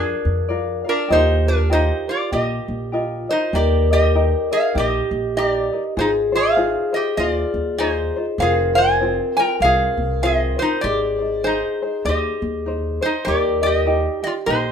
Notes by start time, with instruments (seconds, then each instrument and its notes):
Already playing: upright bass F2, resonator guitar played with a steel bar D4 G#4, ukulele F4 A#4 D5 F5, vibraphone A#4
0.25 upright bass F2
0.48 ukulele F4 A#4 D5 F5
0.84 ukulele F4 A#4 F5
0.89 resonator guitar played with a steel bar D4 A#4
1.08 upright bass D#2, ukulele F4 G4 A#4 D#5, vibraphone G4
1.12 resonator guitar played with a steel bar D#4 C5
1.47 resonator guitar played with a steel bar D4 A#4, ukulele F4 A#4
1.69 ukulele F4 G4 A#4 D#5, resonator guitar played with a steel bar C5
1.74 resonator guitar played with a steel bar D#4
2.07 ukulele F4 A#4, resonator guitar played with a steel bar F4 D5
2.31 upright bass A#1, ukulele F4 G4 A#4 D#5, resonator guitar played with a steel bar G4 D#5
2.68 upright bass A#1
2.92 ukulele F4 G4 A#4 D#5, vibraphone F4
3.29 resonator guitar played with a steel bar D#4 C5, ukulele F4 A#4 D#5
3.53 upright bass D#2, ukulele D#4 G4 A#4, resonator guitar played with a steel bar G4 D5, vibraphone A#4
3.90 ukulele D#4 A#4 D#5, resonator guitar played with a steel bar G4 D#5
4.15 ukulele D#4 G4 A#4 D#5
4.51 ukulele D#4 A#4 D#5, resonator guitar played with a steel bar G#4 F5
4.74 upright bass A#1, ukulele D#4 G4 A#4 D#5, vibraphone G4, resonator guitar played with a steel bar D#5
4.79 resonator guitar played with a steel bar G4
5.11 upright bass A#1
5.36 ukulele D#4 G4 A#4, resonator guitar played with a steel bar G4 D5
5.72 ukulele D#4 A#4 D#5
5.97 upright bass G#1, ukulele D#4 F4 G#4 C5, resonator guitar played with a steel bar D#4 C5, vibraphone G#4
6.32 ukulele D#4 F4 C5, resonator guitar played with a steel bar F5
6.37 resonator guitar played with a steel bar G#4
6.57 ukulele D#4 F4 G#4 C5
6.93 ukulele D#4 F4 C5, resonator guitar played with a steel bar G4 D#5
7.17 upright bass D#2, ukulele D#4 F4 G#4 C5, resonator guitar played with a steel bar F4 D#5
7.28 resonator guitar played with a steel bar D5
7.54 upright bass D#2
7.78 ukulele D#4 F4 G#4 C5, resonator guitar played with a steel bar D#4 C5
8.16 ukulele D#4 F4 C5
8.38 upright bass F1, ukulele C4 F4 G#4 C5, resonator guitar played with a steel bar G#4 F5, vibraphone A#4
8.75 ukulele C4 F4 C5, resonator guitar played with a steel bar C5 G#5
9.00 ukulele C4 F4 G#4 C5
9.37 ukulele C4 F4 C5, resonator guitar played with a steel bar A#4 G5
9.60 upright bass C2, ukulele C4 F4 G#4 C5, resonator guitar played with a steel bar F5
9.64 resonator guitar played with a steel bar G#4
9.97 upright bass C2
10.22 ukulele C4 F4 G#4 C5, resonator guitar played with a steel bar G#4 D#5
10.58 ukulele C4 F4 C5, resonator guitar played with a steel bar C5
10.62 resonator guitar played with a steel bar D#4
10.81 upright bass G#1, ukulele D#4 C5, resonator guitar played with a steel bar G4 D5, vibraphone G#4
11.19 ukulele D#4 C5
11.44 ukulele D#4 G#4 C5, resonator guitar played with a steel bar D#4 C5
11.82 ukulele D#4 G#4 C5
12.05 upright bass D#2, ukulele D#4 C5, resonator guitar played with a steel bar D#5
12.09 resonator guitar played with a steel bar G4
12.42 upright bass D#2
12.66 ukulele D#4 C5
13.01 ukulele D#4 G#4 C5, resonator guitar played with a steel bar C5
13.05 resonator guitar played with a steel bar D#4
13.25 upright bass D#2, ukulele D#4 G4 A#4, resonator guitar played with a steel bar G4 D5, vibraphone A#4
13.62 ukulele D#4 G4 D#5, resonator guitar played with a steel bar D5
13.66 resonator guitar played with a steel bar G4
13.74 resonator guitar played with a steel bar D#5
13.86 ukulele D#4 G4 A#4 D#5, vibraphone G4
14.22 ukulele D#4 G4, resonator guitar played with a steel bar D5
14.27 resonator guitar played with a steel bar F4
14.46 upright bass A#1, ukulele D#4 G4 A#4 D#5, resonator guitar played with a steel bar C5
14.50 resonator guitar played with a steel bar D#4